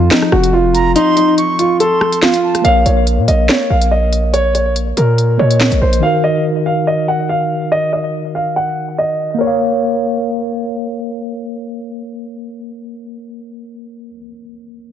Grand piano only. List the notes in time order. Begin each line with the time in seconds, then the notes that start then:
0.11 D#4
0.32 F#4
0.53 F4
0.96 D#4
1.16 D#4
1.59 F4
1.80 A4
2.22 F4
2.65 F5
2.86 C#5
3.28 D#5
3.49 C#5
3.70 F5
3.91 D#5
4.34 C#5
4.55 C#5
4.97 A#4
5.39 C#5
5.82 C5
6.03 F5
6.24 D#5
6.66 F5
6.87 D#5
7.08 F#5
7.29 F5
7.72 D#5
7.93 D#5
8.35 F5
8.56 F#5
8.98 D#5
9.41 C#5